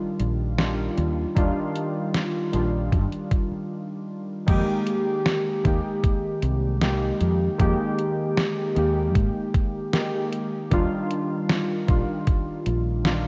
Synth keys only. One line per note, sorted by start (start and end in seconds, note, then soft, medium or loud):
0.00 0.58 D#3 loud
0.00 0.58 G3 medium
0.00 0.59 D4 medium
0.00 0.59 F4 loud
0.58 0.85 D#3 medium
0.58 0.85 G3 medium
0.58 0.85 D4 medium
0.58 0.85 F4 medium
1.35 2.48 D#3 loud
1.35 2.49 G3 medium
1.35 2.49 D4 medium
1.35 2.50 F4 loud
2.52 3.65 D#3 medium
2.52 3.65 G3 medium
2.52 3.66 D4 medium
2.52 3.67 F4 medium
4.46 5.59 D#3 loud
4.46 5.60 G#3 medium
4.46 5.61 A#3 medium
4.46 5.61 G4 loud
5.63 6.77 D#3 medium
5.63 6.77 G#3 medium
5.63 6.78 A#3 medium
5.63 6.78 G4 medium
6.81 7.08 D#3 medium
6.81 7.08 G#3 medium
6.81 7.09 A#3 medium
6.81 7.09 G4 medium
7.58 8.71 D#3 loud
7.58 8.72 G#3 medium
7.58 8.72 A#3 medium
7.58 8.73 G4 loud
8.75 9.88 D#3 medium
8.75 9.89 G#3 medium
8.75 9.89 A#3 medium
8.75 9.90 G4 medium
9.93 10.20 D#3 medium
9.93 10.20 G#3 medium
9.93 10.20 A#3 medium
9.93 10.20 G4 medium
10.70 11.83 D#3 loud
10.70 11.84 G3 medium
10.70 11.84 D4 medium
10.70 11.85 F4 loud
11.87 13.00 D#3 medium
11.87 13.00 G3 medium
11.87 13.01 D4 medium
11.87 13.01 F4 medium
13.04 13.28 D#3 medium
13.04 13.28 G3 medium
13.04 13.28 D4 medium
13.04 13.28 F4 medium